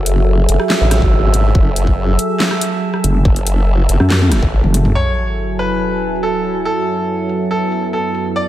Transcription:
Already playing: F#1 F#3 F#4 G#4 A4 E5
0.06 closed hi-hat
0.49 F#1, closed hi-hat
0.60 cross-stick
0.70 snare, clap
0.81 A1
0.91 cross-stick, snare, closed hi-hat
1.02 G#1, kick
1.34 closed hi-hat
1.55 F#1, kick
1.76 closed hi-hat
1.87 kick
2.19 closed hi-hat
2.40 snare, clap
2.51 cross-stick
2.61 closed hi-hat
2.94 cross-stick
3.04 F#1, closed hi-hat
3.25 F#1, kick
3.36 closed hi-hat
3.47 closed hi-hat
3.89 F#1, closed hi-hat
4.00 F#2, cross-stick
4.10 snare, clap
4.32 cross-stick, snare, closed hi-hat
4.42 A1, kick
4.64 F#1, high tom
4.74 closed hi-hat, mid tom
4.85 mid tom
4.95 F#2 F#3 E4 A4 C#5 G#5, sub drop
5.17 closed hi-hat
5.59 B4, closed hi-hat
6.02 closed hi-hat
6.23 A4
6.44 closed hi-hat
6.65 B3 A4
6.87 closed hi-hat
7.29 closed hi-hat
7.51 A4
7.72 closed hi-hat
7.93 A4
8.15 closed hi-hat
8.36 E2 E3 D4 F#4 G#4 D5

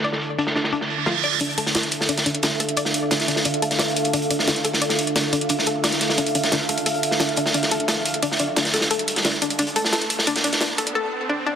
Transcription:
Already playing: D4 A4 E5 A5
0.04 D5, closed hi-hat
0.12 snare
0.22 closed hi-hat
0.38 D4, closed hi-hat
0.47 snare
0.55 D4, snare, closed hi-hat
0.64 snare
0.72 D4, closed hi-hat, reverse cymbal
0.81 snare
0.90 closed hi-hat
1.06 F4, snare, closed hi-hat
1.24 D5, closed hi-hat
1.33 closed hi-hat
1.41 D4 A4 E5 F5, closed hi-hat
1.50 closed hi-hat
1.58 A4, closed hi-hat
1.66 snare
1.75 D5, snare, closed hi-hat
1.83 closed hi-hat
1.91 closed hi-hat
2.01 snare
2.09 D4, closed hi-hat
2.18 snare, closed hi-hat
2.26 D4, closed hi-hat
2.35 closed hi-hat
2.43 D4, snare, closed hi-hat
2.60 A4, closed hi-hat
2.69 closed hi-hat
2.77 D5, closed hi-hat
2.85 snare
2.94 closed hi-hat
3.11 D4, snare, closed hi-hat
3.20 snare, closed hi-hat
3.28 D4, snare, closed hi-hat
3.36 snare
3.45 D4, closed hi-hat
3.54 closed hi-hat
3.62 A4, closed hi-hat
3.71 snare, closed hi-hat
3.79 D5, snare, closed hi-hat
3.88 closed hi-hat
3.96 closed hi-hat
4.04 closed hi-hat
4.13 D4, closed hi-hat
4.22 closed hi-hat
4.30 D4, closed hi-hat
4.39 snare
4.48 D4, snare, closed hi-hat
4.56 closed hi-hat
4.64 A4, closed hi-hat
4.74 snare
4.81 D5, closed hi-hat
4.90 snare, closed hi-hat
4.99 closed hi-hat
5.07 closed hi-hat
5.16 D4, snare, closed hi-hat
5.33 D4, closed hi-hat
5.41 closed hi-hat
5.49 D4, closed hi-hat
5.59 snare
5.66 A4, closed hi-hat
5.84 D5, snare, closed hi-hat
5.92 snare, closed hi-hat
6.01 snare, closed hi-hat
6.09 snare
6.18 D4, closed hi-hat
6.26 closed hi-hat
6.35 D4, closed hi-hat
6.44 snare, closed hi-hat
6.52 D4, snare, closed hi-hat
6.69 A4, closed hi-hat
6.77 closed hi-hat
6.86 A4, closed hi-hat, riser
6.94 closed hi-hat
7.03 closed hi-hat
7.11 snare
7.20 D4, snare, closed hi-hat
7.29 closed hi-hat
7.36 D4, closed hi-hat
7.46 snare
7.54 D4, closed hi-hat
7.63 snare, closed hi-hat
7.71 A4, closed hi-hat
7.80 closed hi-hat
7.88 A4, snare, closed hi-hat
8.06 closed hi-hat
8.14 closed hi-hat
8.22 D4, closed hi-hat
8.32 snare
8.39 D4, closed hi-hat
8.56 D4, snare, closed hi-hat
8.65 snare, closed hi-hat
8.74 A4, snare, closed hi-hat
8.81 snare
8.91 A4, closed hi-hat
8.99 closed hi-hat
9.08 closed hi-hat
9.16 snare, closed hi-hat
9.25 D4, snare, closed hi-hat
9.33 closed hi-hat
9.42 D4, closed hi-hat
9.50 closed hi-hat
9.59 D4, closed hi-hat
9.67 closed hi-hat
9.76 A4, closed hi-hat
9.85 snare
9.93 A4, snare, closed hi-hat
10.02 closed hi-hat
10.10 closed hi-hat
10.19 snare
10.27 D4, closed hi-hat
10.36 snare, closed hi-hat
10.44 D4, closed hi-hat
10.53 snare, closed hi-hat
10.61 D4, snare, closed hi-hat
10.78 A4, closed hi-hat
10.87 closed hi-hat
10.95 A4
11.29 D4
11.46 D4

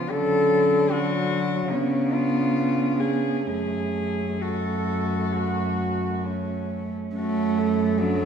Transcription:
Already playing: C#3 F4
0.11 D3 F#3 C#4 A4
0.92 F#3 C#4 F#4
1.70 C#3 B3 C#4 D4
2.13 F4
3.00 G#4
3.46 F#2 A3 C#4 G#4
4.41 A3 F#4 A4
5.33 F#4
6.25 C#4
7.15 F#2 A3 C#4 F#4
7.59 A4
8.00 F#3 D4

